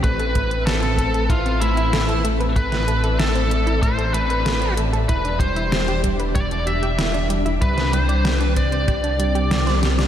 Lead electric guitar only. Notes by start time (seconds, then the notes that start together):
0.04 B4
0.66 A4
1.30 F4
1.61 E4
2.56 B4
3.20 A4
3.82 C5
4.14 B4
5.09 B4
5.40 C5
6.35 D5
6.67 E5
7.62 B4
7.94 C5
8.36 B4
8.57 D5